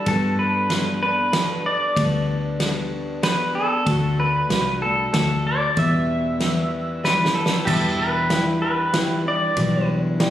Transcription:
0.06 fingered electric bass G2, steel-string acoustic guitar G3 B3 D4 A4, pedal steel guitar A4, kick, ride
0.39 pedal steel guitar B4
0.70 steel-string acoustic guitar G3 B3 D4 A4, snare, ride
1.03 steel-string acoustic guitar B3 D4 A4, pedal steel guitar B4
1.33 steel-string acoustic guitar G3 B3 D4 A4, snare, ride
1.66 pedal steel guitar D5
1.96 fingered electric bass D2, steel-string acoustic guitar G3 B3 D4 A4, kick, ride
2.60 steel-string acoustic guitar G3 B3 D4 A4, snare, ride
3.23 steel-string acoustic guitar G3 B3 D4 A4, pedal steel guitar B4, snare, ride
3.54 steel-string acoustic guitar B3 D4 A4, pedal steel guitar A4
3.85 fingered electric bass D2, steel-string acoustic guitar D3 A3 D4 F#4, kick, ride
4.20 pedal steel guitar B4
4.49 fingered electric bass C2, steel-string acoustic guitar D3 A3 D4 F#4, snare, ride
4.82 steel-string acoustic guitar A3 D4 F#4, pedal steel guitar A4
5.12 fingered electric bass D2, steel-string acoustic guitar D3 A3 D4 F#4, pedal steel guitar A4, snare, ride
5.47 pedal steel guitar D5
5.75 steel-string acoustic guitar E2 B2 E3 G3 B3 E4, fingered electric bass E2, pedal steel guitar E5, kick, ride
6.39 steel-string acoustic guitar E3 G3 B3 E4, snare, ride
7.04 steel-string acoustic guitar E3 G3 B3 E4, pedal steel guitar B4, snare
7.25 snare
7.35 pedal steel guitar A4
7.46 snare
7.65 steel-string acoustic guitar E2 B2 E3 G3 D4 E4, fingered electric bass E2, pedal steel guitar G4 A4 B4 E5, kick, crash
7.99 pedal steel guitar B4
8.29 steel-string acoustic guitar E3 G3 D4 E4, upright piano E4 G4 B4, snare, ride
8.62 pedal steel guitar B4
8.93 steel-string acoustic guitar E3 G3 D4 E4, upright piano E4 G4 B4, snare, ride
9.25 steel-string acoustic guitar E3 G3 D4 E4, pedal steel guitar D5
9.56 fingered electric bass B1, steel-string acoustic guitar E2 B2 E3 G3 D4 E4, kick, ride
10.19 steel-string acoustic guitar E3 G3 D4 E4, upright piano E4 G4 D5, snare, ride

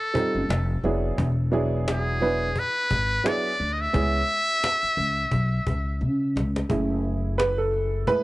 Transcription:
Already playing: muted trumpet A4
0.14 upright piano G3 C4 D#4 F4 A4, cajon bass
0.35 upright bass F#1
0.49 upright bass F1, cajon slap
0.83 upright bass F1, upright piano F#3 B3 D4 E4 G#4, cajon slap
1.18 upright bass E1, cajon bass
1.52 upright piano F#3 B3 D4 E4 G#4, cajon slap
1.88 muted trumpet G#4, cajon slap
2.21 upright piano F#3 B3 D4 E4 B4, cajon slap
2.56 muted trumpet B4, cajon bass
2.91 upright bass G#1, cajon bass
3.24 upright piano F#3 B3 D4 E4 G#4, muted trumpet D5, cajon slap
3.59 upright bass D2, cajon slap
3.73 muted trumpet D#5
3.81 muted trumpet E5
3.93 upright bass C#2, upright piano G#3 B3 C#4 E4 G#4, cajon bass
4.29 cajon slap
4.64 cajon slap
4.83 muted upright bass stroke
4.97 upright bass C#2, cajon slap
5.32 upright bass B1, cajon bass
5.67 upright bass C#2, cajon bass
6.01 upright bass C#3, cajon slap
6.36 upright bass C#2, cajon slap
6.56 cajon slap
6.69 upright bass F#1, upright piano A3 E4 G#4, cajon bass
7.05 cajon slap
7.38 upright piano B4, cajon slap
7.58 upright piano A4
7.74 cajon slap
8.07 upright piano G#3 A3 E4 B4, cajon bass

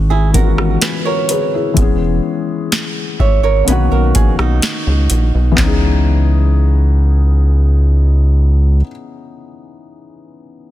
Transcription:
Already playing: analog synth bass G#1, felt piano E3 G#3 B3 C#4 F#4
0.10 nylon-string guitar E4 G#4
0.33 felt piano E3 G#3 B3 C#4 F4, nylon-string guitar F#4 A#4, kick, closed hi-hat
0.44 felt piano F#4
0.58 cross-stick
0.82 nylon-string guitar G#4 B4, snare, closed hi-hat
1.05 felt piano F#4 A#4, nylon-string guitar A#4 C#5
1.29 felt piano G#4 B4, closed hi-hat
1.54 felt piano E4 G#4
1.74 analog synth bass E1, felt piano E3 G#3 B3, kick, closed hi-hat
1.79 felt piano C#4 G#4
2.72 snare, closed hi-hat
3.20 analog synth bass G#1, nylon-string guitar C#5 E5, kick
3.43 nylon-string guitar A#4 C#5
3.65 analog synth bass B1, felt piano D3 A#3 B3, nylon-string guitar G#4 B4, closed hi-hat
3.70 felt piano D#3 C#4 F#4
3.92 analog synth bass B1, nylon-string guitar F#4 A#4
4.15 analog synth bass A#1, nylon-string guitar G#4, kick, closed hi-hat
4.39 analog synth bass B1, nylon-string guitar D#4 F#4, cross-stick
4.62 snare, closed hi-hat
4.87 analog synth bass C#2
5.10 analog synth bass A#1, closed hi-hat
5.35 analog synth bass B1
5.51 felt piano E3 B3
5.58 analog synth bass C#2, felt piano C#4, kick, snare, clap
5.63 felt piano D#4 G#4

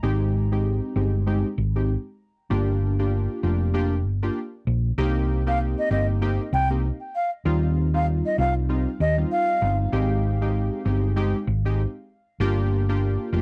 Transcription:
0.03 fingered electric bass G#1, synth keys G#3 C4 D#4 G4
0.52 synth keys G#3 C4 D#4 G4
0.96 fingered electric bass G1, synth keys G#3 C4 D#4 G4
1.27 synth keys G#3 C4 D#4 G4
1.58 fingered electric bass G#1
1.75 synth keys G#3 C4 D#4 G4
2.50 fingered electric bass G1, synth keys A#3 D4 F4 G4
2.99 synth keys A#3 D4 F4 G4
3.43 fingered electric bass F1, synth keys A#3 D4 F4 G4
3.74 synth keys A#3 D4 F4 G4
4.05 fingered electric bass G1
4.23 synth keys A#3 D4 F4 G4
4.67 fingered electric bass A#1
4.98 fingered electric bass C2, synth keys A#3 C4 D#4 G4
5.47 synth keys A#3 C4 D#4 G4, flute F5
5.78 flute D#5
5.90 fingered electric bass G1, synth keys A#3 C4 D#4 G4, flute D#5
6.21 synth keys A#3 C4 D#4 G4
6.53 fingered electric bass C2, flute G5
6.70 synth keys A#3 C4 D#4 G4
7.15 flute F5
7.45 fingered electric bass D#2, synth keys G3 C4 D#4 F4
7.94 synth keys G3 C4 D#4 F4, flute F5
8.26 flute D#5
8.38 fingered electric bass C2, synth keys G3 C4 D#4 F4, flute F5
8.69 synth keys G3 C4 D#4 F4
9.00 fingered electric bass D#2, flute D#5
9.18 synth keys G3 C4 D#4 F4
9.32 flute F5
9.62 fingered electric bass G1, synth keys G3 C4 D#4 F4
9.92 fingered electric bass G#1, synth keys G#3 C4 D#4 G4
10.41 synth keys G#3 C4 D#4 G4
10.85 fingered electric bass G1, synth keys G#3 C4 D#4 G4
11.16 synth keys G#3 C4 D#4 G4
11.47 fingered electric bass G#1
11.65 synth keys G#3 C4 D#4 G4
12.40 fingered electric bass G1, synth keys A#3 D4 F4 G4
12.89 synth keys A#3 D4 F4 G4
13.33 fingered electric bass F1, synth keys A#3 D4 F4 G4

